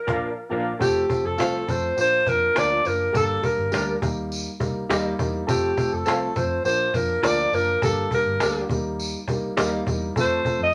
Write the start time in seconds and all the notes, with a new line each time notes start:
Already playing: A#4
0.07 A#1 F3 A#3 D4 A#4 D5 F5, cajon bass, cajon slap
0.49 A#1 F3 A#3 D4 A#4 D5 F5
0.79 F1 F3 A3 C4 G4 A4, cajon bass, tambourine
1.09 F3 A3 C4 A4, cajon bass, tambourine
1.24 F1 A4
1.37 C2 F3 A3 C4 F4 A4 C5 F5, cajon slap, tambourine
1.67 F2 F3 A3 C4 A4 C5, cajon bass, tambourine
1.97 A#1 F3 A#3 D4 A#4 C5, cajon slap, tambourine
2.26 F2 F3 A#3 D4 A#4, cajon bass, tambourine
2.55 D2 F3 A#3 D4 F4 A#4 D5, cajon slap, tambourine
2.84 F#1 F3 A#3 A#4, cajon slap, tambourine
3.00 cajon slap
3.12 G1 G3 A#3 D4 A#4, cajon bass, tambourine
3.17 A4
3.42 G3 A#3 D4 A#4, cajon bass, tambourine
3.57 G1
3.72 D2 G3 A#3 D4 G4 A#4 D5, cajon slap, tambourine
4.02 D#2 G3 A#3 D#4 A#4, cajon bass, tambourine
4.32 cajon slap, tambourine
4.60 C2 G3 A#3 D#4 A#4, cajon bass, tambourine
4.89 D#2 G3 A#3 D#4 G4 A#4 D#5, cajon slap, tambourine
5.19 E2 G3 A#3 D#4 A#4, cajon bass, tambourine
5.34 cajon slap
5.47 F1 F3 A3 C4 G4 A4, cajon bass, tambourine
5.77 F3 A3 C4 A4, cajon bass, tambourine
5.92 F1 A4
6.06 C2 F3 A3 C4 A4 C5 F5, cajon slap, tambourine
6.36 F2 F3 A3 C4 A4 C5, cajon bass, tambourine
6.64 A#1 F3 A#3 D4 A#4 C5, cajon slap, tambourine
6.94 F2 F3 A#3 D4 A#4, cajon bass, tambourine
7.23 D2 F3 A#3 D4 F4 A#4 D5, cajon slap, tambourine
7.52 F#1 F3 A#3 D4 A#4, tambourine
7.82 G1 G3 A#3 D4 A4 A#4, cajon bass, tambourine
7.97 cajon slap
8.11 G3 A#3 D4 A#4, cajon bass, tambourine
8.26 G1
8.40 D2 G3 A#3 D4 G4 A#4 D5, cajon slap, tambourine
8.70 D#2 G3 A#3 D#4 A#4, cajon bass, tambourine
8.99 cajon slap, tambourine
9.27 C2 G3 A#3 D#4 A#4, cajon bass, tambourine
9.57 D#2 G3 A#3 D#4 G4 A#4 D#5, cajon slap, tambourine
9.87 E2 G3 A#3 D#4 A#4, cajon bass, tambourine
10.02 cajon slap
10.16 F2 F3 A3 C4 A4, cajon bass, tambourine
10.20 C5
10.45 F3 A3 C4 A4, cajon bass, tambourine
10.59 F2
10.63 D#5